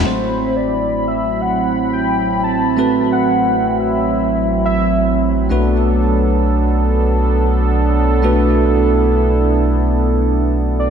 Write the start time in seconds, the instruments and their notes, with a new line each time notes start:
0.04 analog synth bass A1, analog synth pad F#3 C4 E4 B5, tine electric piano F#3 A3 C4 C5, soft synth lead C5
0.56 soft synth lead D5
1.08 soft synth lead E5
1.41 soft synth lead F#5
1.93 soft synth lead G5
2.44 soft synth lead A5
2.77 tine electric piano A3 C4 F#4 B4
3.12 soft synth lead F#5
3.80 soft synth lead E5
4.65 soft synth lead E5
5.49 analog synth bass B1, tine electric piano A3 D4 F#4 B4, analog synth pad B3 D4 A4
8.22 tine electric piano A3 D4 F#4 B4, analog synth pad E4
10.79 soft synth lead D5